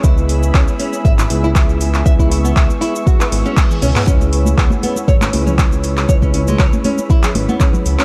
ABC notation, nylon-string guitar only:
X:1
M:4/4
L:1/16
Q:"Swing 16ths" 1/4=119
K:C#m
V:1 name="Nylon-string guitar"
E z3 C z C z e E z E z4 | e E E B, e z E z F B z C z2 C B, | C z3 B, z B, z c C z C z4 | c C C G, c z C z E G z B, C z2 C |]